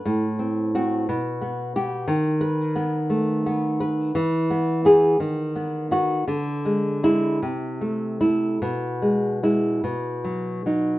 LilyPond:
\new Staff \with { instrumentName = "Nylon-string guitar" } { \time 6/8 \key g \major \tempo 4. = 57 << { r4 fis'8 r4 g'8 | \key e \major r8 b'4 r4. | r4 gis'8 r4 fis'8 | r4 e'8 r4 e'8 |
r4 e'8 r4 dis'8 | } \\ { a,8 c'8 c'8 b,8 b8 b8 | dis4 b8 a8 b8 b'8 | e8 b8 b8 dis8 b8 b8 | d8 gis8 gis8 c8 a8 a8 |
b,8 gis8 gis8 b,8 fis8 fis8 | } >> }